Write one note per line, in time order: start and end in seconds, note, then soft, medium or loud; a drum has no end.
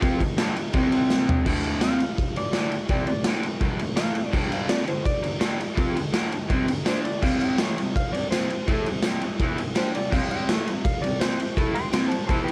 0.01 0.19 F3 medium
0.01 0.20 C4 loud
0.01 0.20 F4 loud
0.01 kick loud
0.01 ride loud
0.20 0.35 G2 medium
0.20 0.35 D3 medium
0.20 kick medium
0.20 ride medium
0.38 0.55 G2 medium
0.38 0.55 D3 loud
0.38 0.56 G3 medium
0.38 snare loud
0.38 ride loud
0.38 tambourine loud
0.56 0.71 G2 medium
0.56 0.71 D3 medium
0.56 ride medium
0.73 1.45 C3 loud
0.73 1.46 G3 loud
0.73 1.46 C4 loud
0.73 kick loud
0.73 ride loud
0.92 ride medium
1.10 snare medium
1.10 tambourine medium
1.29 floor tom medium
1.45 1.80 D2 loud
1.45 1.81 A2 loud
1.45 1.82 D3 loud
1.45 kick loud
1.45 crash loud
1.64 ride medium
1.81 1.99 C3 medium
1.81 1.99 G3 medium
1.81 2.00 C4 medium
1.81 2.35 F5 loud
1.81 snare loud
1.81 ride loud
1.81 tambourine medium
1.99 2.14 D2 medium
1.99 2.14 A2 medium
1.99 ride medium
2.18 kick loud
2.18 ride medium
2.36 2.51 D2 medium
2.36 2.51 A2 medium
2.36 2.89 D5 loud
2.36 ride medium
2.53 2.71 D2 medium
2.53 2.72 A2 loud
2.53 2.72 D3 loud
2.53 snare loud
2.53 ride loud
2.53 tambourine medium
2.72 muted overdriven electric guitar stroke medium
2.72 ride medium
2.89 3.07 C3 medium
2.89 3.08 G3 loud
2.89 3.08 C4 loud
2.89 3.06 D5 medium
2.89 kick loud
2.89 ride loud
3.07 3.23 D2 medium
3.07 3.23 A2 medium
3.07 3.25 D5 medium
3.07 ride medium
3.24 3.43 D2 medium
3.24 3.43 A2 loud
3.24 3.44 D3 loud
3.24 snare loud
3.24 ride loud
3.24 tambourine medium
3.43 3.59 D2 medium
3.43 3.59 A2 medium
3.43 ride medium
3.60 3.79 G2 loud
3.60 3.79 D3 medium
3.60 3.79 G3 loud
3.60 kick loud
3.60 ride medium
3.79 3.94 D2 medium
3.79 3.95 A2 medium
3.79 ride medium
3.96 4.14 A2 medium
3.96 4.15 E3 loud
3.96 4.16 A3 medium
3.96 4.32 F5 loud
3.96 snare loud
3.96 ride medium
3.96 tambourine loud
4.15 4.30 D2 medium
4.15 4.30 A2 medium
4.15 ride medium
4.32 4.67 G2 loud
4.32 4.68 D3 loud
4.32 4.69 G3 loud
4.32 kick loud
4.32 crash loud
4.52 4.70 F5 medium
4.52 ride medium
4.67 4.84 F2 medium
4.67 4.84 C3 loud
4.67 4.87 F3 loud
4.67 4.87 D5 medium
4.67 snare loud
4.67 ride loud
4.67 tambourine medium
4.85 5.01 G2 medium
4.85 5.01 D3 medium
4.85 5.06 C5 medium
4.85 ride medium
5.06 5.76 D5 loud
5.06 kick loud
5.06 ride loud
5.23 5.38 G2 medium
5.23 5.38 D3 medium
5.23 ride medium
5.40 5.58 G2 loud
5.40 5.59 D3 loud
5.40 5.59 G3 loud
5.40 snare loud
5.40 ride loud
5.40 tambourine medium
5.59 muted overdriven electric guitar stroke medium
5.59 ride medium
5.76 5.95 F3 loud
5.76 5.95 C4 loud
5.76 5.96 F4 loud
5.76 kick loud
5.76 ride loud
5.95 6.11 G2 medium
5.95 6.11 D3 medium
5.95 ride medium
6.12 6.31 G2 loud
6.12 6.32 D3 medium
6.12 6.32 G3 medium
6.12 snare loud
6.12 ride loud
6.12 tambourine medium
6.32 6.48 G2 medium
6.32 6.48 D3 medium
6.32 ride medium
6.49 6.66 C3 medium
6.49 6.68 G3 loud
6.49 6.68 C4 medium
6.49 kick loud
6.49 ride loud
6.67 6.82 G2 medium
6.67 6.83 D3 medium
6.67 ride medium
6.85 7.04 D3 medium
6.85 7.04 A3 loud
6.85 7.05 D4 loud
6.85 7.04 C5 loud
6.85 snare loud
6.85 ride loud
6.85 tambourine medium
7.04 7.20 G2 medium
7.04 7.20 D3 medium
7.04 7.22 D5 loud
7.04 ride medium
7.22 7.58 C3 medium
7.22 7.59 G3 loud
7.22 7.59 C4 loud
7.22 7.40 F5 medium
7.22 kick loud
7.22 crash loud
7.40 7.79 G5 medium
7.40 ride medium
7.58 7.76 A2 medium
7.58 7.77 E3 medium
7.58 7.77 A3 medium
7.58 snare loud
7.58 ride loud
7.58 tambourine medium
7.78 7.92 C3 medium
7.78 7.93 G3 medium
7.78 7.93 F5 medium
7.78 ride medium
7.96 8.13 F5 loud
7.96 kick loud
7.96 ride loud
8.13 8.28 C3 medium
8.13 8.28 G3 medium
8.13 8.30 D5 medium
8.13 ride medium
8.31 8.49 C3 medium
8.31 8.50 G3 loud
8.31 8.50 C4 loud
8.31 8.66 C5 loud
8.31 snare loud
8.31 ride loud
8.31 tambourine loud
8.50 muted overdriven electric guitar stroke medium
8.50 ride medium
8.68 8.86 A3 loud
8.68 8.86 E4 loud
8.68 8.86 A4 loud
8.68 kick loud
8.68 ride loud
8.86 9.01 C3 medium
8.86 9.01 G3 medium
8.86 ride medium
9.03 9.21 C3 medium
9.03 9.22 G3 loud
9.03 9.22 C4 medium
9.03 snare loud
9.03 ride loud
9.03 tambourine loud
9.21 9.37 C3 medium
9.21 9.37 G3 medium
9.21 ride medium
9.39 9.58 E3 medium
9.39 9.58 B3 loud
9.39 9.58 E4 loud
9.39 kick loud
9.39 ride loud
9.58 9.73 C3 medium
9.58 9.73 G3 medium
9.58 ride medium
9.75 9.93 G3 loud
9.75 9.94 D4 loud
9.75 9.94 G4 loud
9.75 9.94 C5 loud
9.75 snare loud
9.75 ride loud
9.75 tambourine loud
9.94 10.09 C3 medium
9.94 10.09 G3 medium
9.94 10.12 D5 loud
9.94 ride medium
10.11 10.47 C3 medium
10.11 10.48 G3 loud
10.11 10.48 C4 loud
10.11 10.30 F5 medium
10.11 kick loud
10.11 crash loud
10.31 10.70 G5 loud
10.31 ride medium
10.48 10.66 A2 medium
10.48 10.66 E3 medium
10.48 10.67 A3 loud
10.48 snare loud
10.48 ride loud
10.48 tambourine medium
10.67 10.81 C3 medium
10.67 10.81 G3 medium
10.67 10.83 F5 loud
10.67 ride medium
10.84 11.02 F5 loud
10.84 kick loud
10.84 ride loud
11.02 11.17 C3 medium
11.02 11.18 G3 medium
11.02 11.20 D5 loud
11.02 ride medium
11.20 11.38 C3 loud
11.20 11.39 G3 loud
11.20 11.39 C4 loud
11.20 11.55 C5 loud
11.20 snare loud
11.20 ride medium
11.20 tambourine loud
11.40 muted overdriven electric guitar stroke medium
11.40 ride medium
11.57 11.75 A3 loud
11.57 11.75 E4 loud
11.57 11.75 A4 loud
11.57 kick loud
11.57 ride loud
11.74 11.90 C3 medium
11.74 11.91 G3 medium
11.74 11.90 G5 loud
11.74 11.92 C6 loud
11.74 ride medium
11.92 12.10 C3 medium
11.92 12.11 G3 medium
11.92 12.11 C4 loud
11.92 12.09 G5 medium
11.92 12.08 C6 loud
11.92 snare loud
11.92 ride loud
11.92 tambourine loud
12.08 12.25 C3 medium
12.08 12.25 C5 medium
12.08 12.27 A5 loud
12.08 ride medium
12.12 12.26 G3 medium
12.27 12.52 E3 loud
12.27 12.52 B3 medium
12.27 12.43 C5 medium
12.27 12.44 A5 medium
12.27 kick loud
12.27 ride loud
12.31 12.52 E4 loud
12.44 12.52 B4 medium
12.44 12.52 G5 loud
12.48 ride medium